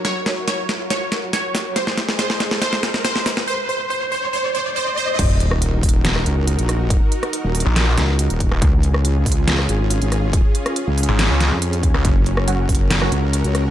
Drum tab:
CC |--------------------------------|--------------------------------|--------------------------------|x-------------------------------|
HH |x---x---x---x---x---x---x---o---|x---x---x---x---x---x---x---o---|--------------------------------|x---x---x---ox--x---x---x-x-x---|
SD |o---o---o---o---o---o---o---o---|o-o-o-o-o-o-o-o-o-o-o-o-o-o-o-o-|--------------------------------|------r---------o-r---------r---|
BD |--------------------------------|--------------------------------|--------------------------------|o-----------o-------------------|

CC |--------------------------------|--------------------------------|--------------------------------|--------------------------------|
HH |x---x-x-x---ox--x---x---x-x-x---|x---x---x---ox--x---x---x-x-x---|x---x-x-x---ox--x---x---x-x-x---|x---x---x---ox--x---x---x-x-x---|
SD |------r---------o---o---------r-|------r---------o-r---------r---|------r---------o---o---------r-|------r---------o-r---------r---|
BD |o---------------------------o---|o-----------o-------------------|o---------------------------o---|o-----------o-------------------|